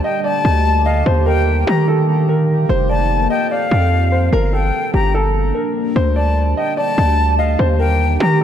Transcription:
Already playing: ambient pad D3 A3 G4
0.04 grand piano D#5, flute G5
0.24 grand piano D5, flute A5
0.45 808-style bass D2
0.86 grand piano D#5, flute F5
1.06 808-style bass D#2, ambient pad D#3 A#3, grand piano C5
1.26 grand piano A#4, flute G5
1.67 808-style bass D#3, grand piano G4, flute A#5
1.88 grand piano A4
2.29 grand piano A#4
2.69 808-style bass F1, ambient pad F3 C4 A4, grand piano C5
2.90 grand piano D5, flute A5
3.30 grand piano D#5, flute G5
3.51 grand piano D5, flute F5
3.71 808-style bass F2
4.12 grand piano C5
4.33 808-style bass G1, ambient pad G3 A#3 D4, grand piano A#4
4.53 grand piano A4, flute G5
4.94 808-style bass G1, grand piano G4, flute A#5
5.15 grand piano A4
5.55 grand piano A#4
5.96 808-style bass D2, ambient pad D3 A3 G4, grand piano C5
6.16 grand piano D5, flute A5
6.57 grand piano D#5, flute G5
6.77 grand piano D5, flute A5
6.98 808-style bass D2
7.39 grand piano D#5, flute F5
7.59 808-style bass D#2, ambient pad D#3 A#3, grand piano C5
7.79 grand piano A#4, flute G5
8.20 808-style bass D#3, grand piano G4, flute A#5

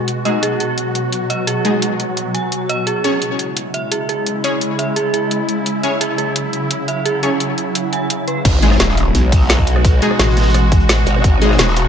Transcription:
Already playing: synth drone B2 F#4
0.08 synth drone F#3, closed hi-hat
0.25 synth stab G#3 D#4 G#4, synth bell D#5, closed hi-hat
0.43 synth bell G#4, closed hi-hat
0.60 synth bell G#4, closed hi-hat
0.78 closed hi-hat
0.95 closed hi-hat
1.12 closed hi-hat
1.30 synth bell D#5, closed hi-hat
1.47 synth bell G#4, closed hi-hat
1.65 synth stab G#3 D#4 G#4, synth bell G#4, closed hi-hat
1.82 closed hi-hat
2.00 closed hi-hat
2.17 closed hi-hat
2.34 synth bell G#5, closed hi-hat
2.52 closed hi-hat
2.69 synth bell D#5, closed hi-hat
2.87 synth drone C#3 G#3 E4, synth bell G#4, closed hi-hat
3.04 synth stab C#4 G#4 C#5, synth bell G#4, closed hi-hat
3.22 closed hi-hat
3.39 closed hi-hat
3.57 closed hi-hat
3.74 synth bell E5, closed hi-hat
3.91 synth bell G#4, closed hi-hat
4.09 synth bell G#4, closed hi-hat
4.26 closed hi-hat
4.44 synth stab C#4 G#4 C#5, closed hi-hat
4.61 closed hi-hat
4.79 synth bell E5, closed hi-hat
4.96 synth bell G#4, closed hi-hat
5.14 synth bell G#4, closed hi-hat
5.31 closed hi-hat
5.49 closed hi-hat
5.66 synth drone F#3, closed hi-hat
5.83 synth stab C#4 G#4 C#5, synth bell E5, closed hi-hat
6.01 synth bell G#4, closed hi-hat
6.18 synth bell G#4, closed hi-hat
6.36 closed hi-hat
6.53 closed hi-hat
6.71 closed hi-hat
6.88 synth bell E5, closed hi-hat
7.05 synth bell G#4, closed hi-hat
7.23 synth stab C#4 G#4 C#5, synth bell G#4, closed hi-hat
7.40 closed hi-hat
7.58 closed hi-hat
7.75 closed hi-hat
7.93 synth bell G#5, closed hi-hat
8.10 closed hi-hat
8.28 synth bell B4, closed hi-hat
8.45 wobble bass G#1, synth drone B2 G#3 F#4, kick, closed hi-hat, crash, impact
8.62 synth stab G#3 D#4 G#4, closed hi-hat
8.71 cross-stick, snare
8.79 wobble bass D#1, snare, closed hi-hat
8.89 snare
8.97 closed hi-hat
9.15 wobble bass B1, closed hi-hat
9.32 kick, closed hi-hat, open hi-hat
9.49 snare, closed hi-hat
9.58 kick, closed hi-hat
9.67 closed hi-hat
9.76 cross-stick
9.85 kick, closed hi-hat
10.02 synth stab G#3 D#4 G#4, closed hi-hat
10.11 cross-stick
10.19 wobble bass A1, snare, closed hi-hat
10.29 snare
10.37 cross-stick, snare, closed hi-hat
10.41 snare, closed hi-hat
10.45 snare, closed hi-hat
10.50 snare, closed hi-hat
10.54 cross-stick, closed hi-hat
10.72 kick, closed hi-hat
10.80 closed hi-hat
10.89 snare, closed hi-hat
10.97 closed hi-hat
11.06 wobble bass G#1, closed hi-hat
11.24 wobble bass G#1, kick, closed hi-hat
11.41 synth stab G#3 D#4 G#4, closed hi-hat
11.50 cross-stick, snare
11.58 wobble bass D#1, snare, closed hi-hat
11.68 snare
11.76 cross-stick, closed hi-hat

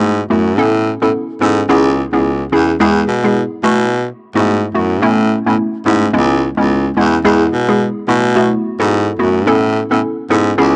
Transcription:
Already playing: baritone saxophone G#2, synth pluck A3 B3 E4 F#4
0.30 baritone saxophone F#2, synth pluck A3 B3 E4 F#4
0.58 baritone saxophone A2, synth pluck B3 C#4 E4 A4
1.02 baritone saxophone A2, synth pluck B3 C#4 E4 A4
1.41 baritone saxophone G#2, synth pluck B3 C#4 E4 A4
1.69 baritone saxophone C#2, synth pluck B3 C#4 E4 G#4
2.13 baritone saxophone C#2, synth pluck B3 C#4 E4 G#4
2.52 baritone saxophone E2, synth pluck B3 C#4 E4 G#4
2.80 baritone saxophone E2, synth pluck G#3 B3 E4 G#4
3.08 baritone saxophone B2
3.24 synth pluck G#3 B3 E4 G#4
3.63 baritone saxophone B2, synth pluck A3 B3 E4 F#4
4.35 baritone saxophone G#2, synth pluck A3 B3 E4 F#4
4.74 baritone saxophone F#2, synth pluck A3 B3 E4 F#4
5.02 baritone saxophone A2, synth pluck A3 B3 C#4 E4
5.46 baritone saxophone A2, synth pluck A3 B3 C#4 E4
5.86 baritone saxophone G#2, synth pluck A3 B3 C#4 E4
6.13 baritone saxophone C#2, synth pluck G#3 B3 C#4 E4
6.57 baritone saxophone C#2, synth pluck G#3 B3 C#4 E4
6.97 baritone saxophone E2, synth pluck G#3 B3 C#4 E4
7.25 baritone saxophone E2, synth pluck G#3 B3 E4 G#4
7.53 baritone saxophone B2
7.68 synth pluck G#3 B3 E4 G#4
8.08 baritone saxophone B2, synth pluck A3 B3 E4 F#4
8.36 synth pluck A3 B3 E4 F#4
8.80 baritone saxophone G#2, synth pluck B3 E4 F#4 A4
9.19 baritone saxophone F#2, synth pluck A3 B3 E4 F#4
9.47 baritone saxophone A2, synth pluck B3 C#4 E4 A4
9.91 baritone saxophone A2, synth pluck B3 C#4 E4 A4
10.30 baritone saxophone G#2, synth pluck B3 C#4 E4 A4
10.58 baritone saxophone C#2, synth pluck B3 C#4 E4 G#4

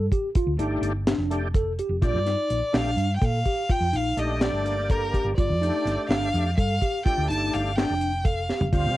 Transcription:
0.12 tine electric piano G4, kick, closed hi-hat
0.35 tine electric piano F4, kick, closed hi-hat
0.47 fingered electric bass D2
0.57 fingered electric bass G1, tonewheel organ A3 D4 G4, tine electric piano D#4, closed hi-hat
0.81 fingered electric bass G1, closed hi-hat
1.07 tine electric piano D4, snare, closed hi-hat
1.18 fingered electric bass F1
1.30 tonewheel organ A3 D4 G4, closed hi-hat
1.54 tine electric piano A4, kick, closed hi-hat
1.79 tine electric piano G4, closed hi-hat
1.89 fingered electric bass F1
2.01 fingered electric bass A#1, tonewheel organ A3 D4 G4, tine electric piano F4, kick, closed hi-hat
2.06 violin D5
2.14 fingered electric bass G2
2.26 tine electric piano D#4, snare, closed hi-hat
2.50 fingered electric bass A#1, closed hi-hat
2.73 fingered electric bass A#1, tonewheel organ A3 D4 G4, tine electric piano D4, violin F5, snare, closed hi-hat
2.96 fingered electric bass G2, closed hi-hat
3.16 violin G5
3.21 fingered electric bass A#2, tine electric piano A4, violin F5, kick, closed hi-hat
3.46 tine electric piano G4, kick, closed hi-hat
3.70 tine electric piano F4, violin G5, kick, closed hi-hat
3.80 fingered electric bass F2
3.93 fingered electric bass A#1, tine electric piano D#4, violin F5, closed hi-hat
4.17 fingered electric bass A#1, tonewheel organ A3 D4 G4, violin D#5, closed hi-hat
4.41 tine electric piano D4, violin D5, snare, closed hi-hat
4.52 fingered electric bass G1
4.65 tonewheel organ A#3 D4 G4, closed hi-hat
4.90 tine electric piano A4, violin A#4, kick, closed hi-hat
5.14 tine electric piano G4, kick, closed hi-hat
5.24 fingered electric bass G1
5.37 fingered electric bass G1, tine electric piano F4, violin D5, kick, closed hi-hat
5.49 fingered electric bass F2
5.61 tonewheel organ A3 D4 G4, tine electric piano D#4, closed hi-hat
5.85 fingered electric bass G1, snare, closed hi-hat
6.09 fingered electric bass G1, tine electric piano D4, violin F5, snare, closed hi-hat
6.34 fingered electric bass F2, tonewheel organ A3 D4 G4, closed hi-hat
6.57 fingered electric bass G2, tine electric piano A4, violin F5, kick, closed hi-hat
6.82 tine electric piano G4, kick, closed hi-hat
7.05 tonewheel organ A3 D4 G4, tine electric piano F4, violin G5, kick, closed hi-hat
7.18 fingered electric bass D2
7.30 fingered electric bass G1, tine electric piano D#4, violin A5, closed hi-hat
7.53 fingered electric bass G1, violin F5, closed hi-hat
7.76 tonewheel organ A3 D4 G4, tine electric piano D4, violin G5, snare, closed hi-hat
7.90 fingered electric bass F1
8.01 closed hi-hat
8.25 tine electric piano A4, violin F5, kick, closed hi-hat
8.49 tine electric piano G4, snare
8.61 fingered electric bass F1, floor tom
8.72 fingered electric bass D2, tonewheel organ G3 C4 F4, tine electric piano F4, violin F5, kick, closed hi-hat
8.86 fingered electric bass C3

